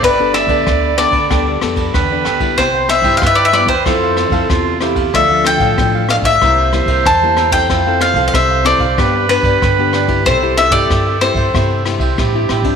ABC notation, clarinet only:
X:1
M:4/4
L:1/8
Q:1/4=94
K:C
V:1 name="Clarinet"
d4- d z B2 | c2 B2 A2 F G | A3 z c4 | c4 B4 |
A4- A z G2 |]